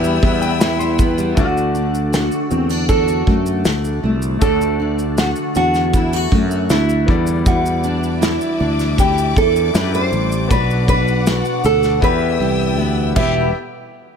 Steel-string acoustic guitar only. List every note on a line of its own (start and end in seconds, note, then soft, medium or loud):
0.00 1.44 E2 medium
0.00 1.16 G3 medium
0.00 0.40 E4 medium
0.23 0.60 B3 medium
0.41 0.78 E4 medium
0.61 0.98 B3 medium
0.79 1.44 E4 medium
0.99 1.45 B3 medium
1.17 1.44 G3 medium
1.37 4.41 D3 medium
1.75 2.50 D4 medium
2.12 2.88 F#4 medium
2.50 2.70 C4 medium
2.70 3.64 D4 soft
2.89 5.16 F#4 medium
3.27 4.02 A3 medium
3.66 4.79 D4 medium
4.03 6.31 A3 medium
4.41 7.49 D3 medium
4.80 5.55 D4 medium
5.17 5.94 F#4 medium
5.56 6.70 D4 medium
5.94 6.13 E4 medium
6.13 7.16 F#4 medium
6.32 7.16 A3 medium
6.70 7.49 D4 medium
7.08 7.45 E2 medium
7.46 10.50 E2 medium
7.84 8.59 D4 medium
8.21 8.97 E4 medium
8.60 9.73 D4 medium
8.98 10.58 E4 medium
9.74 10.58 D4 medium
10.12 10.58 G3 medium
10.51 12.10 B2 medium
10.89 11.64 D4 medium
11.27 12.10 F#4 medium
11.65 12.10 D4 medium
12.03 13.14 E2 medium
12.40 13.16 G3 medium
12.78 13.17 B3 medium
13.15 13.46 E2 medium
13.15 13.46 B2 medium
13.15 13.46 E3 medium
13.15 13.47 G3 medium
13.15 13.47 B3 medium
13.15 13.47 G4 medium